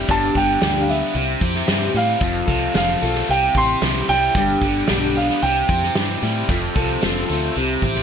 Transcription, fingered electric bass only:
0.09 G1
0.35 G1
0.62 D2
1.15 C2
1.41 F2
1.68 G2
1.94 A2
2.21 F1
2.47 C2
2.75 F1
3.03 B1
3.29 C2
3.54 A1
3.82 C2
4.09 C2
4.35 G1
4.62 G1
4.90 B1
5.43 C2
5.69 F2
5.96 G2
6.22 A2
6.48 F1
6.76 C2
7.03 F1
7.30 D2
7.56 C2
7.83 A1

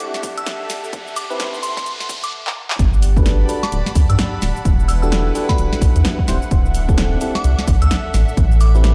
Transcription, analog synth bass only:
2.79 G1
3.72 D1
3.95 D2
4.10 G2
4.42 D1
4.65 E1
5.58 D1
5.81 B1
5.96 E2
6.28 D1
6.51 D1
7.44 C2
7.68 A1
7.82 D2
8.14 A1
8.37 A1

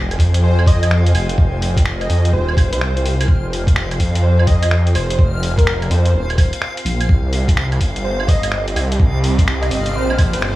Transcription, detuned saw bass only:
Already playing: F1
0.19 F2
1.14 F1
2.09 F2
2.33 D#1
2.72 C2
3.28 F1
4.00 F2
4.95 F1
5.90 F2
6.14 D#1
6.85 A#1
7.09 C2
7.81 G1
8.75 C2
9.71 G1
9.95 A#1
10.34 G1

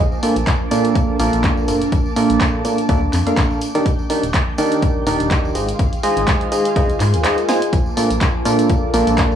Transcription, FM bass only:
0.36 A#1
1.20 A#1
1.33 A#1
1.68 F1
1.92 A#1
2.30 A#1
2.89 D2
3.13 F2
3.86 D#1
4.23 D#1
5.07 D#1
5.20 D#1
5.55 G#1
5.79 G#1
6.17 G#1
6.76 C2
7.00 G#2
7.14 D#2
7.73 A#1
8.11 A#1
8.94 A#1
9.07 A#1

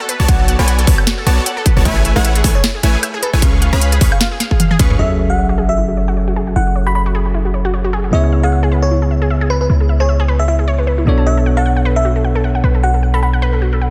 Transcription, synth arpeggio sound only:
0.00 A4
0.09 B4
0.20 A4
0.28 F#4
0.39 A4
0.48 F#5
0.59 A4
0.68 F#5
0.79 A4
0.87 B4
0.98 A4
1.07 F#4
1.18 A4
1.26 F#5
1.37 A4
1.46 F#5
1.57 A4
1.66 B4
1.77 A4
1.85 E4
1.96 G#4
2.05 E5
2.16 G#4
2.25 E5
2.35 G#4
2.44 A4
2.55 G#4
2.64 E4
2.75 G#4
2.83 E5
2.94 G#4
3.03 E5
3.14 G#4
3.23 A4
3.34 G#4
3.42 F4
3.53 G#4
3.62 F5
3.73 G#4
3.82 F5
3.92 G#4
4.01 B4
4.12 G#4
4.21 F4
4.32 G#4
4.40 F5
4.51 G#4
4.60 F5
4.71 G#4
4.80 B4
4.90 G#4
4.99 E4
5.10 F#4
5.19 C#5
5.30 F#4
5.38 C#5
5.49 F#4
5.58 G#4
5.69 F#4
5.78 E4
5.89 F#4
5.97 C#5
6.08 F#4
6.17 C#5
6.28 F#4
6.36 G#4
6.47 F#4
6.56 E4
6.67 F#4
6.76 C#5
6.86 F#4
6.95 C#5
7.06 F#4
7.15 G#4
7.26 F#4
7.34 E4
7.45 F#4
7.54 C#5
7.65 F#4
7.74 C#5
7.84 F#4
7.93 G#4
8.04 F#4
8.13 E4
8.24 G#4
8.32 E5
8.43 G#4
8.52 E5
8.63 G#4
8.72 B4
8.82 G#4
8.91 E4
9.02 G#4
9.11 E5
9.22 G#4
9.30 E5
9.41 G#4
9.50 B4
9.61 G#4
9.70 E4
9.81 G#4
9.89 E5
10.00 G#4
10.09 E5
10.20 G#4
10.28 B4
10.39 G#4
10.48 E4
10.59 G#4
10.68 C#5
10.79 B4
10.87 B4
10.98 E4
11.07 D5
11.18 A5
11.26 F#4
11.37 A4
11.46 F#5
11.57 A4
11.66 F#5
11.77 F#5
11.85 B4
11.96 A4
12.05 F#4
12.16 A4
12.24 F#5
12.35 A4
12.44 F#5
12.55 F#5
12.64 B4
12.75 A4
12.83 F#4
12.94 A4
13.03 F#5
13.14 A4
13.23 F#5
13.33 F#5
13.42 B4
13.53 A4
13.62 F#4
13.73 A4
13.81 F#5

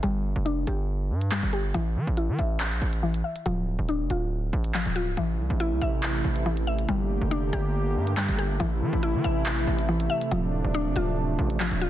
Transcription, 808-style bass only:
0.03 G1
0.36 F1
0.67 G1
1.10 G2
1.43 G1
1.74 A1
1.96 E3
2.07 A1
2.29 E3
2.39 A1
2.72 A#1
2.82 A1
3.46 D1
3.79 D1
4.00 F1
4.10 D1
4.53 A1
4.86 D1
5.07 C1
5.17 A1
5.39 C2
5.50 A1
5.71 C2
5.81 A1
6.24 A1
6.89 G1
7.21 F1
7.53 G1
7.96 G2
8.29 G1
8.60 A1
8.81 E3
8.93 A1
9.14 E3
9.24 A1
9.57 A#1
9.67 A1
10.31 D1
10.64 D1
10.86 F1
10.96 D1
11.39 A1
11.71 D1

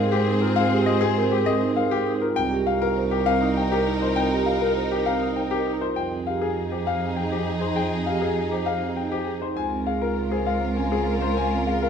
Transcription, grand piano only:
Already playing: F5
0.12 G4
0.41 A#4
0.56 F5
0.86 D#5
1.01 G#4
1.31 G4
1.46 D#5
1.76 F5
1.91 G4
2.21 A#4
2.36 G5
2.67 F5
2.82 A#4
3.11 G4
3.26 F5
3.57 G5
3.72 G4
4.02 C5
4.16 G5
4.46 F5
4.61 A#4
4.91 G4
5.06 F5
5.36 G5
5.51 G4
5.81 C5
5.96 G5
6.27 F5
6.42 G#4
6.72 G4
6.87 F5
7.16 G5
7.32 G4
7.61 C5
7.76 G5
8.06 F5
8.22 G#4
8.51 G4
8.66 F5
8.97 G5
9.12 G4
9.42 C5
9.57 G#5
9.87 F5
10.02 A#4
10.32 G#4
10.47 F5
10.77 G#5
10.92 G#4
11.22 C5
11.37 G#5
11.67 F5
11.82 A#4

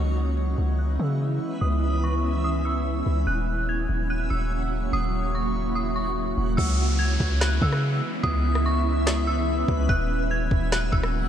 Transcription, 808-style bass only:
Already playing: C#2
0.58 C#2
0.99 C#3
1.62 C#2
3.06 C#2
3.27 D#1
3.89 D#1
4.31 D#1
4.93 D#1
6.37 D#1
6.58 C#2
7.20 C#2
7.62 C#3
8.24 C#2
9.68 C#2
9.89 D#1
10.51 D#1
10.93 D#1

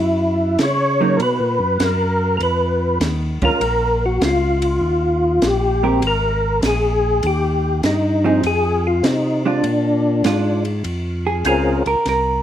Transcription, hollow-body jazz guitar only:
1.01 F#3 A#3 D#4
3.42 G#3 C#4 F4
5.83 G#3 C4 G4 A#4
8.24 F3 C4 D#4 G#4
9.46 G#3 D4 F4
10.25 G#3 D4 F4
11.27 G#4
11.48 G#4
11.87 A#4
12.09 A#4

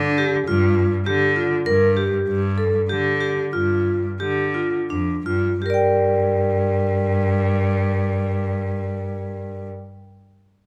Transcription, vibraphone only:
0.18 G4
0.47 F4
1.06 G4
1.36 F4
1.66 A#4
1.97 G4
2.58 A4
2.89 G4
3.21 G4
3.53 F4
4.20 G4
4.54 F4
4.90 D4
5.26 F4
5.62 G4 A#4
5.70 D5
5.74 G5

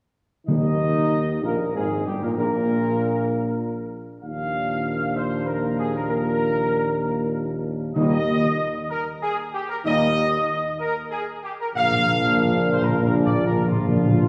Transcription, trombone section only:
0.47 D#3
1.42 A#2
1.76 G#2
2.08 G2
2.24 A#2
2.40 A#2
4.25 A#2 F3
7.97 A#2 G3
9.85 A#2 G3
11.75 A#2 F3
13.03 A#2 F3
13.67 A#2 F3

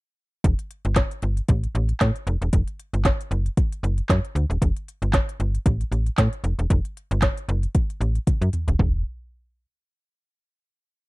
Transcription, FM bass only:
0.44 E1
0.85 G1
1.23 G1
1.49 A1
1.75 A1
2.01 A2
2.27 F1
2.42 E1
2.53 F1
2.93 G1
3.31 F#1
3.83 F#1
4.10 F#2
4.35 D2
4.50 D#1
4.62 E1
5.02 G1
5.40 G1
5.66 A1
5.92 A1
6.18 A2
6.44 F1
6.59 E1
6.70 F1
7.11 G1
7.49 F#1
8.01 A1
8.41 F#2
8.68 D#1
8.79 E1

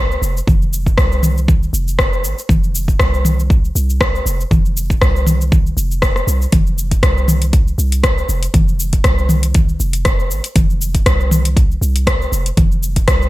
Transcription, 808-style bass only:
Already playing: C2
0.22 F1
0.47 F1
0.98 C2
1.73 F1
2.24 G#1
2.49 F1
3.00 C2
3.75 C2
4.26 F1
4.51 F1
5.02 C2
5.77 F1
6.27 C2
6.53 F1
7.03 C2
7.78 C2
8.29 F1
8.54 F1
9.04 C2
9.80 F1
10.30 G#1
10.56 F1
11.06 C2
11.81 C2
12.32 F1
12.57 F1
13.08 C2

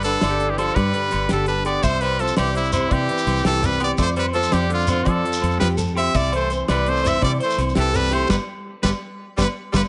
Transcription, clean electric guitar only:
0.04 B4
0.23 D5
0.58 C5
0.76 D5
0.95 B4
1.30 G4
1.48 A4
1.66 G4
1.84 E5
2.02 C5
2.20 C5
2.38 D5
2.73 C5
2.90 D5
3.44 G4
3.63 muted clean electric guitar stroke
3.82 G4
3.99 D5
4.17 C5
4.35 C5
4.53 D5
4.89 C5
5.06 D5
5.60 G4
5.77 A4
5.95 G4
6.15 E5
6.33 C5
6.51 C5
6.68 D5
7.04 C5
7.22 D5
7.40 C5
7.76 G4
7.94 A4
8.11 G4
8.29 G4 B4 D5
8.83 G4 B4 D5
9.37 G4 B4 D5
9.73 G4 B4 D5

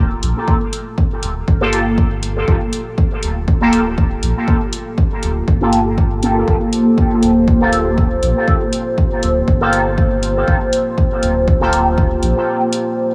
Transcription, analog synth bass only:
Already playing: D1
0.23 A#1
1.23 D1
1.48 G1
2.48 G1
3.23 D1
4.23 A#1
5.23 D1
5.48 G1
6.48 G1
7.23 D1
8.23 A#1
9.23 D1
9.48 G1
10.48 G1
11.23 D1
12.23 A#1

